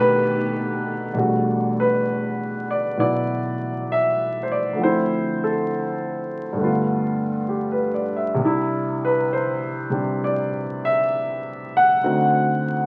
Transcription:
0.00 1.13 B2 medium
0.00 1.13 D#3 medium
0.00 1.14 A3 soft
0.00 1.13 B3 medium
0.00 1.15 D4 soft
0.00 1.15 D#4 soft
0.00 1.13 G4 medium
0.00 1.16 G4 medium
0.00 1.10 A4 medium
0.00 1.16 B4 medium
1.14 4.77 E2 soft
1.14 2.96 B2 soft
1.14 4.78 G3 soft
1.14 4.78 A3 soft
1.18 4.79 D4 soft
1.18 4.79 F#4 medium
1.80 2.71 B4 medium
2.71 2.98 D5 medium
2.97 4.78 B2 soft
2.97 4.78 F#3 soft
2.97 4.79 B3 soft
2.97 4.79 E4 soft
2.97 3.91 D5 medium
3.92 4.38 E5 medium
4.43 4.50 C5 medium
4.52 4.80 D5 medium
4.73 6.56 D2 soft
4.73 6.54 D3 soft
4.78 6.59 F3 soft
4.78 6.60 C4 soft
4.83 6.62 E4 soft
4.83 5.44 C5 medium
5.44 7.19 A4 medium
6.53 8.37 G2 soft
6.53 8.38 D3 soft
6.58 8.40 A3 soft
6.58 8.41 B3 soft
6.64 8.43 F4 medium
7.48 7.92 G4 soft
7.72 8.11 B4 soft
7.94 8.22 D5 soft
8.16 8.48 E5 soft
8.35 12.00 C2 medium
8.35 9.88 C3 soft
8.43 9.91 D4 soft
8.43 12.05 E4 medium
9.05 9.33 B4 medium
9.33 10.25 C5 medium
9.90 12.02 C3 soft
9.90 12.03 G3 soft
9.90 12.02 C4 soft
9.90 12.04 D4 soft
10.24 10.81 D5 medium
10.85 11.77 E5 medium
11.77 12.62 F#5 medium
12.03 12.86 D2 soft
12.03 12.86 D3 soft
12.03 12.86 C4 soft
12.03 12.86 D#4 soft
12.03 12.86 F#4 soft

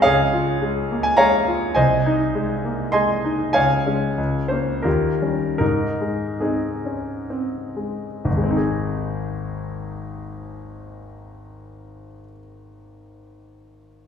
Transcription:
0.02 1.73 C#2 soft
0.02 1.00 G#4 medium
0.02 0.99 C#5 medium
0.02 1.03 F5 medium
0.33 0.78 F4 soft
0.62 1.07 G#3 soft
0.91 1.19 A#3 soft
1.03 1.18 G#5 medium
1.17 1.65 G#3 soft
1.17 1.72 C#5 medium
1.17 1.72 F5 medium
1.17 1.75 A#5 medium
1.48 1.77 F4 soft
1.75 3.52 C2 soft
1.75 2.90 C5 medium
1.75 2.90 D#5 medium
1.75 2.92 G#5 medium
2.06 2.53 D#4 soft
2.35 2.82 G#3 soft
2.65 2.94 A#3 soft
2.92 3.43 G#3 soft
2.92 3.22 D#5 soft
2.92 3.22 G#5 medium
2.92 3.23 C6 medium
3.25 3.56 D#4 soft
3.53 4.16 C#2 soft
3.53 4.46 C#5 medium
3.53 4.46 F5 medium
3.53 4.50 G#5 medium
3.86 4.15 G#3 soft
3.86 4.15 C#4 soft
4.18 4.83 C#2 soft
4.48 4.82 A#3 soft
4.48 4.82 C#4 soft
4.48 4.84 C5 medium
4.82 5.58 D#2 soft
4.82 5.55 F4 soft
4.82 5.55 G4 soft
4.82 5.57 A#4 soft
5.22 5.56 G3 soft
5.22 5.56 C#4 soft
5.58 8.22 G#2 soft
5.58 6.38 D#4 soft
5.58 6.42 A#4 medium
6.01 6.68 G#3 soft
6.40 7.25 C4 soft
6.40 7.25 D#4 soft
6.40 7.29 G#4 soft
6.86 7.30 C#4 soft
7.30 8.06 C4 soft
7.76 8.25 G#3 soft
8.25 12.06 G#1 soft
8.31 12.12 D#2 soft
8.37 12.19 G#3 soft
8.43 12.25 C4 soft
8.51 12.32 D#4 soft
8.57 12.38 G#4 soft

